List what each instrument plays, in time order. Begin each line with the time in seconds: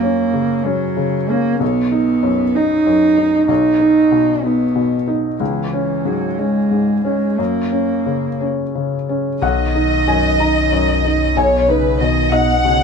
Already playing: felt piano F#2, cello A#3
0.03 felt piano C#4
0.33 felt piano C#3
0.65 cello F#3, felt piano C#4
0.97 felt piano C#3
1.29 cello A#3, felt piano C#4
1.60 felt piano B1, cello B3
1.92 felt piano D#4
2.23 felt piano F#2
2.55 felt piano D#4, cello D#4
2.87 felt piano F#2
3.17 felt piano D#4
3.48 felt piano B1, cello D#4
3.80 felt piano D#4
4.12 felt piano B2
4.44 cello B3, felt piano D#4
4.76 felt piano B2
5.07 felt piano D#4
5.40 felt piano C#2, cello E3
5.73 felt piano C#4
6.05 felt piano G#2, cello F#3
6.38 cello G#3, felt piano C#4
6.71 felt piano G#2
7.05 cello G#3, felt piano C#4
7.39 felt piano F#2, cello A#3
7.72 felt piano C#4
8.06 felt piano C#3
8.41 felt piano C#4
8.75 felt piano C#3
9.09 felt piano C#4
9.42 felt piano B1 F#5, sub bass B1, cello D#3, violin section D#5
9.75 felt piano D#4
10.07 felt piano F#2 G#5
10.40 felt piano D#4 A#5
10.72 felt piano F#2
11.05 felt piano D#4
11.36 felt piano B1 G#5, cello B2, violin section C#5
11.68 cello C#3, felt piano D#4, violin section B4
12.00 felt piano B2, cello D#3, violin section D#5
12.31 cello B2, felt piano D#4 D#5, violin section F#5
12.64 felt piano B2, cello C#3